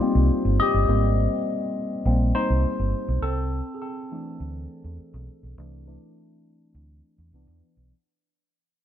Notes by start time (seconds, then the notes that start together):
Already playing: C4 D#4 F4 G4 C5 D5 D#5
0.00 G3 A#3 C4
0.15 C2
0.30 muted fingered electric bass stroke
0.45 G1
0.60 G4 D#5
0.74 G1
0.88 G#1 G3 A#3 C4
2.05 A#1 G3 A#3 C4
2.35 D#4 C5
2.50 C2
2.79 G1
3.08 B1
3.22 C2 C4 A4
3.74 G#4
3.82 C4 A4
4.12 E3 A3 D4
4.40 D2
4.84 E2
4.99 muted fingered electric bass stroke
5.14 B1
5.43 B1
5.58 C2 E3 A3 D4
5.87 E3 A3 D4
6.75 D2
7.18 E2
7.32 C2 E3 B3 D4
7.47 E2
7.77 B1